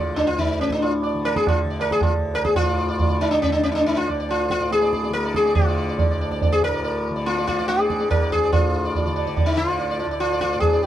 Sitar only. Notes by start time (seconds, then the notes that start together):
Already playing: F4 D5
0.16 D4
0.27 F4
0.39 D#4
0.61 C#4
0.72 D4
0.82 F4
1.03 D5
1.25 A#4
1.36 G#4
1.49 F4
1.70 D5
1.81 A#4
1.92 G#4
2.03 F4
2.35 A#4
2.45 G#4
2.56 F4 D5
2.67 D5
2.78 D5
2.88 D5
2.98 D5
3.09 D5
3.21 D#4
3.31 D4
3.42 C#4
3.52 D4
3.63 C#4
3.72 D4 D#4
3.86 D#4
3.97 F4
4.09 D5
4.20 D5
4.30 F4
4.51 F4
4.61 D5
4.72 G#4
4.82 D5
4.93 D5
5.04 D5
5.13 A#4
5.25 D5
5.36 G#4
5.46 D5
5.55 F4
5.67 D5
5.78 D5
5.89 D5
5.99 D5
6.11 D5
6.21 D5
6.31 D5
6.42 D5
6.52 G#4
6.64 A#4
6.74 D5
6.84 D5
7.16 D5
7.26 F4
7.38 D5
7.47 F4
7.58 D5
7.68 G#4
7.79 D5
7.90 D5
8.00 D5
8.11 A#4
8.22 D5
8.32 G#4
8.43 D5
8.53 F4
8.85 D5
8.96 D5
9.06 D5
9.16 D5
9.27 D5
9.36 D5
9.46 D#4
9.57 F4
9.68 D5
9.79 D5
9.90 D5
10.00 D5
10.11 D5
10.20 F4
10.32 D5
10.41 F4
10.52 D5
10.60 G#4
10.73 D5
10.83 D5